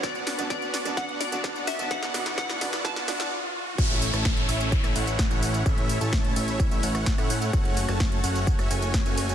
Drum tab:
CC |----------------|----------------|x---------------|----------------|
HH |xxoxxxoxxxoxxxox|xxoxxxoxxxox----|xxoxxxoxxxoxxxox|xxoxxxoxxxoxxxox|
TB |xxxxxxxxx-xxxxxx|xxxxxxxxxxxx----|x-xxx-xxxxxxxxxx|x-xxx-xxxxxxxxxx|
SD |o-o-o-o-o-o-o-o-|oooooooooooo----|---ro----r--o---|----o------ror--|
BD |o---o---o---o---|o---o---o-------|o---o---o---o---|o---o---o---o---|

CC |----------------|
HH |xxoxxxoxxxoxxxox|
TB |x-xxx-xxxxxxxxxx|
SD |---ro----r--o---|
BD |o---o---o---o---|